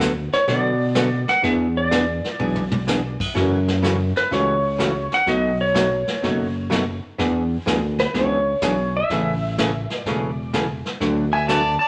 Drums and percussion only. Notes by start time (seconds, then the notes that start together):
0.00 kick, snare, hi-hat pedal
0.33 snare
0.48 brush sweep, kick, snare
0.95 kick, snare, hi-hat pedal
1.28 snare
1.43 brush sweep, kick, snare
1.91 kick, snare, hi-hat pedal
2.24 snare
2.39 mid tom
2.55 mid tom
2.71 mid tom
2.87 snare, hi-hat pedal
3.20 kick, crash
3.36 brush sweep, kick, snare
3.68 snare
3.84 kick, snare, hi-hat pedal
4.16 snare
4.32 brush sweep, kick, snare
4.79 kick, snare, hi-hat pedal
5.12 snare
5.27 brush sweep, kick, snare
5.75 kick, snare, hi-hat pedal
6.07 snare
6.23 brush sweep, kick, snare
6.71 kick, snare, hi-hat pedal
7.19 brush sweep, kick, snare
7.67 kick, snare, hi-hat pedal
7.99 snare
8.14 brush sweep, kick, snare
8.62 kick, snare, hi-hat pedal
9.10 brush sweep, kick, snare
9.58 kick, snare, hi-hat pedal
9.90 snare
10.06 brush sweep, kick, snare
10.53 kick, snare, hi-hat pedal
10.85 snare
11.01 brush sweep, kick, snare
11.49 kick, snare, hi-hat pedal